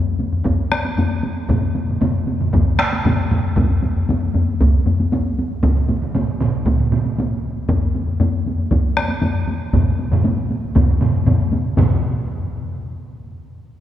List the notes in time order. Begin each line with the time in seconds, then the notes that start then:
0.06 taiko high
0.19 taiko high
0.32 taiko low-mid, taiko high
0.45 taiko, taiko low-mid, taiko high
0.59 taiko high
0.72 taiko rim, taiko high
0.85 taiko high
0.98 taiko low-mid, taiko high
1.11 taiko high
1.23 taiko high
1.36 taiko high
1.49 taiko, taiko low-mid, taiko mid, taiko high
1.63 taiko high
1.75 taiko high
1.89 taiko low-mid, taiko mid, taiko high
2.02 taiko low-mid, taiko mid, taiko high
2.15 taiko high
2.27 taiko high
2.41 taiko low-mid, taiko mid, taiko high
2.53 taiko, taiko low-mid, taiko mid, taiko high
2.66 taiko high
2.79 taiko rim, taiko high
2.93 taiko high
3.05 taiko low-mid, taiko mid, taiko high
3.19 taiko high
3.30 taiko low-mid, taiko mid, taiko high
3.45 taiko high
3.57 taiko, taiko low-mid, taiko high
3.70 taiko low-mid, taiko high
3.83 taiko low-mid, taiko high
3.96 taiko low-mid
4.09 taiko low-mid, taiko high
4.21 taiko high
4.34 taiko low-mid, taiko high
4.48 taiko high
4.61 taiko, taiko low-mid, taiko high
4.74 taiko low-mid, taiko high
4.86 taiko low-mid, taiko high
4.99 taiko high
5.12 taiko high
5.25 taiko high
5.38 taiko high
5.50 taiko high
5.63 taiko, taiko mid, taiko high
5.76 taiko mid, taiko high
5.89 taiko mid, taiko high
6.02 taiko mid, taiko high
6.15 taiko mid, taiko high
6.27 taiko high
6.40 taiko mid, taiko high
6.54 taiko high
6.66 taiko, taiko mid, taiko high
6.80 taiko mid, taiko high
6.92 taiko mid, taiko high
7.05 taiko high
7.18 taiko high
7.31 taiko high
7.56 taiko high
7.69 taiko, taiko low-mid, taiko high
7.82 taiko high
7.95 taiko high
8.07 taiko low-mid, taiko high
8.20 taiko low-mid, taiko high
8.33 taiko high
8.46 taiko high
8.58 taiko low-mid, taiko high
8.71 taiko, taiko low-mid, taiko high
8.84 taiko high
8.97 taiko rim, taiko high
9.09 taiko high
9.22 taiko low-mid, taiko high
9.35 taiko high
9.48 taiko high
9.61 taiko high
9.73 taiko, taiko low-mid, taiko mid, taiko high
9.86 taiko high
9.99 taiko high
10.12 taiko low-mid, taiko mid, taiko high
10.24 taiko high
10.38 taiko high
10.50 taiko high
10.63 taiko high
10.75 taiko, taiko low-mid, taiko mid, taiko high
10.88 taiko high
11.01 taiko low-mid, taiko mid, taiko high
11.26 taiko low-mid, taiko mid, taiko high
11.39 taiko high
11.52 taiko high
11.77 taiko, taiko low-mid, taiko mid, taiko high